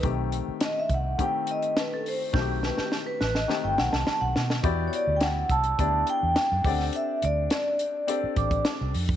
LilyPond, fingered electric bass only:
\new Staff \with { instrumentName = "Fingered electric bass" } { \clef bass \time 4/4 \key b \phrygian \tempo 4 = 104 b,,8. r8. c,8 r2 | b,,8. r8. a,,8 r16 g,,16 b,,16 c,16 r16 b,,16 b,8 | \key e \minor e,8 r16 d,8. c,8 d,8 r16 e,16 r16 fis,16 d,8 | r8 d,8 r4. a,,8 r16 c,16 f,8 | }